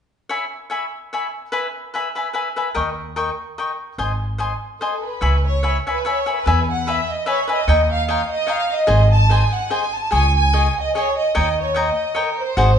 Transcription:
0.29 C#5 E5 G#5 B5
0.70 C#5 E5 G#5 B5
1.13 C#5 E5 G#5 B5
1.52 B4 E5 G#5 B5
1.94 B4 E5 G#5 B5
2.15 B4 E5 G#5 B5
2.33 B4 E5 G#5 B5
2.56 B4 E5 G#5 B5
2.75 D#2 A#4 D#5 G5 C#6
3.16 A#4 D#5 G5 C#6
3.58 A#4 D#5 G5 C#6
3.98 G#1 C5 D#5 G#5 C6
4.38 C5 D#5 G#5 C6
4.80 A4 C5 D#5 G#5 C6
5.03 B4
5.21 C#2 C#5 E5 G#5 B5
5.47 C#5
5.63 C#5 E5 G#5 B5
5.69 C#5
5.87 B4 C#5 E5 G#5 B5
6.05 C#5 E5 G#5 B5
6.10 C#5
6.26 C#5 E5 G#5 B5
6.32 B4
6.46 E2 B4 E5 G#5 B5
6.71 F#5
6.87 B4 E5 G#5 B5
7.10 D#5
7.26 B4 C#5 E5 G#5 B5
7.48 B4 D#5 E5 G#5 B5
7.67 D#2 C#5 D#5 G5 A#5
7.91 F5
8.08 C#5 D#5 F5 G5 A#5
8.31 D#5
8.47 C#5 D#5 F5 G5 A#5
8.72 D#5
8.87 G#1 G#4 C5 D#5 G#5
9.11 A5
9.30 G#4 C5 D#5 G#5
9.52 F#5
9.70 G#4 C5 D#5 G#5
9.95 A5
10.11 C#2 G#4 C#5 D#5 G#5
10.36 G#5
10.53 G#4 C#5 D#5 G#5
10.79 D#5
10.95 G#4 C#5 D#5 G#5
11.17 D#5
11.35 D#2 C#5 D#5 G5 A#5
11.61 C#5
11.74 C#5 D#5 G5 A#5
11.79 D#5
12.15 A#4 C#5 D#5 G5 A#5
12.40 C5
12.57 G#1 F#4 G#4 C5 D#5

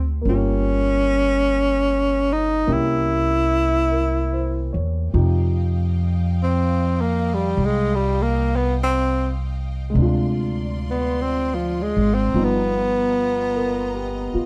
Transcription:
Already playing: D2 G#3 C4 D#4 G4
0.22 G1 A#3 C#4
0.29 C#4 F4 G4
2.33 D#4
2.67 C2 A#3 C#4 E4 G4
2.72 E4
3.91 A#4
4.33 C5
4.73 E2 C#5
5.12 F2 C3 F3 D#4 G4 D#5 F5 G5
6.43 C4
7.01 A#3
7.34 G3
7.57 C2
7.65 G#3
7.95 G3
8.22 A#3
8.56 B3
8.83 C4
9.90 C3 G#3 D5 C6
9.95 D2 D4 F4
10.01 F4
10.91 B3
11.21 C4
11.55 F3
11.82 G#3
11.96 G#1
12.14 C4
12.34 G1 F3 G3 B3 D#4 D#5 A#5
12.44 B3
13.56 A#4
13.94 G4
14.34 F4, muted upright bass stroke

